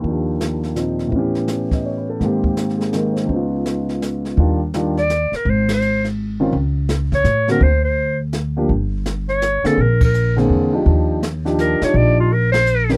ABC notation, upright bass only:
X:1
M:3/4
L:1/8
Q:"Swing" 1/4=166
K:Eb
V:1 name="Upright bass" clef=bass
z6 | z6 | z6 | z6 |
E,,4- E,, z | A,,,6 | _D,,4 =A,,2 | D,,6 |
G,,,4- G,,, z | B,,,4 _F,,2 | E,,4- E,, z | B,,,6 |]